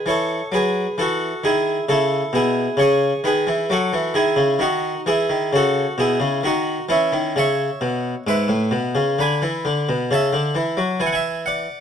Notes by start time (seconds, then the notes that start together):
0.06 E3 A4 C#5
0.52 F#3 G#4 B4
0.98 E3 F#4 A4
1.44 D#3 E4 G#4
1.89 C#3 E4 A4
2.33 B2 E4 G#4
2.77 C#3 C#5
2.81 G#4
3.24 D#3 G#4 B4
3.47 E3
3.70 F#3 F#4 A4
3.93 E3
4.14 D#3 E4 G#4
4.36 C#3
4.59 D#3 D#4 F#4
5.06 E3 E4 G#4
5.30 D#3
5.53 C#3 F#4 A4
5.98 B2 E4 G#4
6.20 C#3
6.43 D#3 D#4 F#4
6.89 E3 C#4 E4
7.12 D#3
7.36 C#3 C#5 E5
7.81 B2
8.27 G#2 B4 E5
8.48 A2
8.71 B2
8.95 C#3
9.19 D3 G#5 B5
9.42 E3
9.65 D3
9.89 B2
10.11 C#3 E5 A5
10.33 D3
10.55 E3
10.77 F#3
11.00 E3 G#5
11.06 F#5
11.13 E5 G#5
11.46 D5 F#5